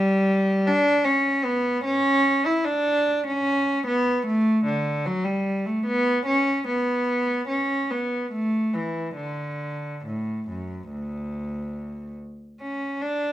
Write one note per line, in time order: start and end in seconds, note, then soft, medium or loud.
0.00 0.64 G3 loud
0.67 1.06 D4 loud
1.05 1.45 C#4 medium
1.45 1.85 B3 medium
1.84 2.44 C#4 loud
2.46 2.66 E4 medium
2.65 3.26 D4 medium
3.27 3.85 C#4 medium
3.87 4.25 B3 medium
4.26 4.65 A3 medium
4.65 5.05 D3 medium
5.06 5.26 F#3 medium
5.24 5.65 G3 medium
5.66 5.86 A3 medium
5.86 6.26 B3 medium
6.26 6.66 C#4 medium
6.68 7.47 B3 medium
7.49 7.89 C#4 medium
7.91 8.32 B3 medium
8.32 8.73 A3 medium
8.74 9.17 E3 medium
9.16 10.02 D3 medium
10.05 10.47 A2 medium
10.49 10.90 F#2 medium
10.91 12.16 D2 medium
12.61 12.99 C#4 medium
13.02 13.32 D4 medium